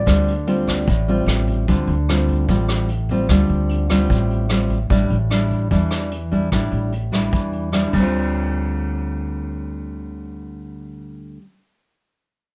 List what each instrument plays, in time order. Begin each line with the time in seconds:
Already playing: tine electric piano D5
0.06 upright bass D2, nylon-string guitar D3 G3 C4 F4, kick, cross-stick, closed hi-hat
0.28 closed hi-hat
0.47 nylon-string guitar G3 C4 F4, closed hi-hat
0.68 kick, cross-stick, closed hi-hat
0.88 upright bass A1, nylon-string guitar A2, kick, closed hi-hat
1.08 nylon-string guitar G3 C4 F4, closed hi-hat
1.26 upright bass A1, cross-stick, closed hi-hat
1.48 kick, closed hi-hat
1.68 upright bass D2, nylon-string guitar D3 G3 C4 F4, kick, closed hi-hat
1.87 upright bass D2, closed hi-hat
2.09 nylon-string guitar G3 C4 F4, cross-stick, closed hi-hat
2.28 kick, closed hi-hat
2.48 upright bass A1, nylon-string guitar A2 G3 C4 F4, kick, closed hi-hat
2.69 cross-stick, closed hi-hat
2.88 closed hi-hat
3.09 nylon-string guitar G3 C4 F4, kick, closed hi-hat
3.29 upright bass D2, nylon-string guitar D3 G3 C4 F4, kick, cross-stick, closed hi-hat
3.49 upright bass D2, closed hi-hat
3.69 closed hi-hat
3.90 nylon-string guitar G3 C4 F4, kick, cross-stick, closed hi-hat
4.09 upright bass A1, nylon-string guitar A2, kick, closed hi-hat
4.30 closed hi-hat
4.49 nylon-string guitar G3 C4 F4, cross-stick, closed hi-hat
4.70 kick, closed hi-hat
4.90 upright bass A1, nylon-string guitar A2 G3 D4 E4, kick, closed hi-hat
5.10 upright bass A1, closed hi-hat
5.30 nylon-string guitar G3 D4 E4, cross-stick, closed hi-hat
5.51 kick, closed hi-hat
5.71 upright bass E2, nylon-string guitar E3 G3 D4 E4, kick, closed hi-hat
5.91 cross-stick, closed hi-hat
6.11 closed hi-hat
6.31 nylon-string guitar G3 D4 E4, kick, closed hi-hat
6.52 upright bass A1, nylon-string guitar A2 G3 D4 E4, kick, cross-stick, closed hi-hat
6.72 upright bass A1, closed hi-hat
6.92 closed hi-hat
7.12 nylon-string guitar G3 D4 E4, kick, cross-stick, closed hi-hat
7.33 upright bass E2, nylon-string guitar E3, kick, closed hi-hat
7.53 closed hi-hat
7.72 nylon-string guitar G3 D4 E4, cross-stick, closed hi-hat
7.87 nylon-string guitar D3
7.93 upright bass D2, nylon-string guitar G3, kick, crash
7.98 nylon-string guitar C4
8.02 nylon-string guitar F4